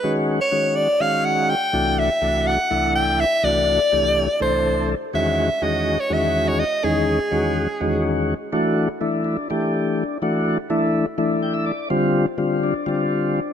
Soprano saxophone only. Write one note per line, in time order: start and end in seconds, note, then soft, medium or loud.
0.00 0.13 B4 medium
0.41 0.77 C#5 medium
0.76 1.02 D5 medium
1.01 1.27 F5 medium
1.25 1.51 F#5 medium
1.50 2.00 G5 loud
1.99 2.49 E5 medium
2.47 2.95 F#5 medium
2.95 3.22 G5 medium
3.20 3.46 E5 medium
3.44 4.41 D5 medium
4.42 4.92 C5 medium
5.15 5.65 E5 medium
5.63 6.02 D#5 medium
6.00 6.15 C#5 medium
6.13 6.50 E5 medium
6.48 6.61 C#5 medium
6.59 6.86 D#5 medium
6.84 8.29 G#4 medium